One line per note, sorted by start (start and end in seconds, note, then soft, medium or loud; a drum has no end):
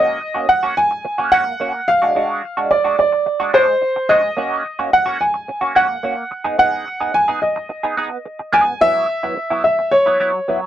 0.00 0.19 A#3 medium
0.00 0.19 C#4 medium
0.00 0.20 F#4 loud
0.00 0.51 D#5 loud
0.21 muted clean electric guitar stroke soft
0.34 0.48 A#3 soft
0.34 0.48 C#4 medium
0.34 0.48 F#4 medium
0.49 0.78 F#5 loud
0.49 muted clean electric guitar stroke soft
0.63 0.75 A#3 medium
0.63 0.76 C#4 medium
0.63 0.76 F#4 medium
0.77 1.34 G#5 loud
0.77 muted clean electric guitar stroke soft
0.91 muted clean electric guitar stroke soft
1.05 muted clean electric guitar stroke soft
1.18 1.31 A#3 soft
1.18 1.32 C#4 medium
1.18 1.33 F#4 medium
1.32 1.52 A#3 medium
1.32 1.46 C#4 loud
1.32 1.45 F#4 loud
1.32 1.89 F#5 loud
1.46 muted clean electric guitar stroke soft
1.60 1.79 A#3 medium
1.60 1.74 C#4 medium
1.60 1.73 F#4 loud
1.74 muted clean electric guitar stroke medium
1.88 2.74 F5 loud
1.88 muted clean electric guitar stroke soft
2.02 2.14 G#3 medium
2.02 2.15 D4 medium
2.02 2.15 F#4 medium
2.15 2.41 G#3 medium
2.15 2.41 D4 medium
2.15 2.42 F#4 loud
2.44 muted clean electric guitar stroke soft
2.57 2.70 G#3 medium
2.57 2.70 D4 medium
2.57 2.70 F#4 medium
2.71 2.97 D5 medium
2.71 muted clean electric guitar stroke soft
2.84 2.97 G#3 medium
2.84 2.97 D4 medium
2.84 2.98 F#4 medium
2.99 3.56 D5 medium
3.12 muted clean electric guitar stroke soft
3.26 muted clean electric guitar stroke soft
3.40 3.52 G#3 medium
3.40 3.53 D4 medium
3.40 3.53 F#4 medium
3.53 3.73 G#3 medium
3.53 3.68 D4 medium
3.53 3.67 F#4 medium
3.53 4.11 C5 loud
3.68 muted clean electric guitar stroke soft
3.81 muted clean electric guitar stroke soft
3.96 muted clean electric guitar stroke medium
4.09 4.29 G#3 medium
4.09 4.23 D4 medium
4.09 4.22 F#4 medium
4.09 4.95 D#5 loud
4.23 muted clean electric guitar stroke medium
4.37 4.63 A#3 medium
4.37 4.63 C#4 medium
4.37 4.63 F#4 loud
4.65 muted clean electric guitar stroke soft
4.79 4.91 A#3 medium
4.79 4.92 C#4 medium
4.79 4.92 F#4 medium
4.92 5.22 F#5 loud
4.92 muted clean electric guitar stroke soft
5.06 5.19 A#3 medium
5.06 5.20 C#4 medium
5.06 5.20 F#4 medium
5.20 5.78 G#5 medium
5.20 muted clean electric guitar stroke soft
5.34 muted clean electric guitar stroke soft
5.48 muted clean electric guitar stroke soft
5.61 5.74 A#3 soft
5.61 5.74 C#4 medium
5.61 5.75 F#4 medium
5.75 5.95 A#3 medium
5.75 5.89 C#4 medium
5.75 5.88 F#4 loud
5.75 6.58 F#5 medium
5.89 muted clean electric guitar stroke soft
6.03 6.23 A#3 medium
6.03 6.16 C#4 medium
6.03 6.15 F#4 medium
6.17 muted clean electric guitar stroke soft
6.31 muted clean electric guitar stroke soft
6.44 6.57 B3 medium
6.44 6.58 D#4 medium
6.44 6.58 G#4 medium
6.58 6.84 B3 medium
6.58 6.85 D#4 medium
6.58 6.85 G#4 medium
6.58 7.16 F#5 loud
6.87 muted clean electric guitar stroke soft
7.00 7.12 B3 medium
7.00 7.13 D#4 medium
7.00 7.14 G#4 medium
7.14 7.40 G#5 loud
7.14 muted clean electric guitar stroke soft
7.28 7.41 B3 medium
7.28 7.41 D#4 medium
7.28 7.41 G#4 medium
7.42 8.49 D#5 medium
7.42 muted clean electric guitar stroke soft
7.56 muted clean electric guitar stroke medium
7.69 muted clean electric guitar stroke soft
7.83 7.96 B3 medium
7.83 7.96 D#4 soft
7.83 7.97 G#4 medium
7.97 8.17 B3 medium
7.97 8.11 D#4 medium
7.97 8.10 G#4 medium
8.11 muted clean electric guitar stroke soft
8.25 muted clean electric guitar stroke soft
8.39 muted clean electric guitar stroke soft
8.53 8.73 B3 medium
8.53 8.66 D#4 medium
8.53 8.66 G#4 medium
8.53 8.82 G#5 loud
8.67 muted clean electric guitar stroke soft
8.81 9.06 F#3 medium
8.81 9.07 B3 medium
8.81 9.07 E4 loud
8.81 9.63 E5 loud
9.23 9.35 F#3 soft
9.23 9.36 B3 medium
9.23 9.36 E4 medium
9.37 muted clean electric guitar stroke soft
9.50 9.63 F#3 medium
9.50 9.64 B3 medium
9.50 9.64 E4 medium
9.64 9.93 E5 medium
9.79 muted clean electric guitar stroke soft
9.91 10.66 C#5 medium
9.91 muted clean electric guitar stroke medium
10.06 10.19 F#3 medium
10.06 10.19 B3 medium
10.06 10.20 E4 medium
10.20 10.39 F#3 medium
10.20 10.34 B3 medium
10.20 10.33 E4 medium
10.34 muted clean electric guitar stroke soft
10.48 10.66 F#3 medium
10.48 10.62 B3 medium
10.48 10.60 E4 medium
10.61 muted clean electric guitar stroke soft